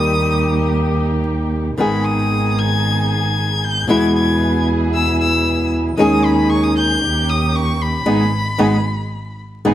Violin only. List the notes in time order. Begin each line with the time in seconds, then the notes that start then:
Already playing: D#6
1.79 B5
2.05 D#6
2.59 G#6
3.11 G#6
3.64 G6
3.90 G#6
4.16 G#6
4.94 E6
5.21 E6
5.98 D#6
6.24 B5
6.50 C#6
6.64 D#6
6.76 G6
7.29 D#6
7.55 C#6
7.82 B5